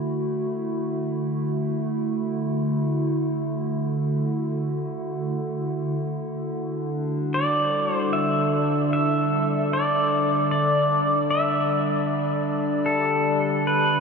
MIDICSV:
0, 0, Header, 1, 3, 480
1, 0, Start_track
1, 0, Key_signature, 2, "major"
1, 0, Tempo, 789474
1, 148, Time_signature, 4, 2, 24, 8
1, 8513, End_track
2, 0, Start_track
2, 0, Title_t, "Pedal steel guitar"
2, 0, Program_c, 0, 26
2, 4464, Note_on_c, 0, 74, 83
2, 4829, Note_off_c, 0, 74, 0
2, 4829, Note_on_c, 0, 72, 83
2, 4941, Note_off_c, 0, 72, 0
2, 4943, Note_on_c, 0, 76, 85
2, 5423, Note_off_c, 0, 76, 0
2, 5430, Note_on_c, 0, 76, 79
2, 5916, Note_off_c, 0, 76, 0
2, 5918, Note_on_c, 0, 74, 81
2, 6369, Note_off_c, 0, 74, 0
2, 6393, Note_on_c, 0, 74, 81
2, 6871, Note_off_c, 0, 74, 0
2, 6873, Note_on_c, 0, 76, 78
2, 7327, Note_off_c, 0, 76, 0
2, 7818, Note_on_c, 0, 69, 80
2, 8312, Note_on_c, 0, 71, 85
2, 8318, Note_off_c, 0, 69, 0
2, 8513, Note_off_c, 0, 71, 0
2, 8513, End_track
3, 0, Start_track
3, 0, Title_t, "Ambient pad"
3, 0, Program_c, 1, 92
3, 0, Note_on_c, 1, 50, 70
3, 0, Note_on_c, 1, 57, 79
3, 0, Note_on_c, 1, 64, 77
3, 0, Note_on_c, 1, 66, 75
3, 3990, Note_off_c, 1, 57, 0
3, 4051, Note_on_c, 1, 62, 65
3, 4276, Note_on_c, 1, 55, 70
3, 4387, Note_on_c, 1, 69, 72
3, 4874, Note_on_c, 1, 74, 73
3, 5281, Note_off_c, 1, 66, 0
3, 5762, Note_off_c, 1, 64, 0
3, 7659, Note_on_c, 1, 67, 78
3, 7809, Note_off_c, 1, 69, 0
3, 8513, Note_off_c, 1, 50, 0
3, 8513, Note_off_c, 1, 55, 0
3, 8513, Note_off_c, 1, 62, 0
3, 8513, Note_off_c, 1, 67, 0
3, 8513, Note_off_c, 1, 74, 0
3, 8513, End_track
0, 0, End_of_file